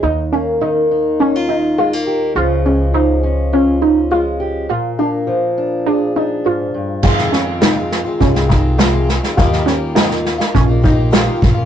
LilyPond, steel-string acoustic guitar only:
\new Staff \with { instrumentName = "Steel-string acoustic guitar" } { \time 4/4 \key ees \mixolydian \tempo 4 = 103 << { r8 bes4 ees'8 ees'16 f'16 ees'8 aes16 bes16 g'8 | <f aes des' f'>8 aes4 des'8 f'8 des'8 aes8 g'8 | r8 bes4 d'8 aes'8 d'4. | r1 |
r1 | } \\ { ees,4 ees2. | des4 f2. | bes,4 f2 aes,8 g,8 | r1 |
r1 | } >> }